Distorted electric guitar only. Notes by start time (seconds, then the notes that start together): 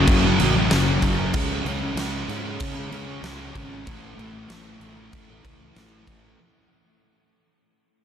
Already playing: F#2 C#3 F#3
0.25 C#3 F#3
0.40 F#2 C#3 F#3
0.55 C#3 F#3
0.69 F#2 C#3 F#3
1.01 F#2 C#3 F#3
1.32 C#3 G#3 C#4
1.64 C#3 G#3 C#4
1.80 G#3 C#4
1.96 C#3 G#3 C#4
2.28 C#3 G#3 C#4
2.43 G#3 C#4
2.75 G#3 C#4
2.89 C#3 G#3 C#4
3.06 G#3 C#4
3.22 C#3 G#3 C#4
3.53 C#3 G#3 C#4
3.86 A2 E3 A3
4.16 A2 E3 A3
4.32 E3 A3
4.49 A2 E3 A3
4.80 A2 E3 A3
4.96 E3 A3
5.27 E3 A3
5.43 A2 E3 A3
5.59 E3 A3
5.73 A2 E3 A3
6.05 A2 E3 A3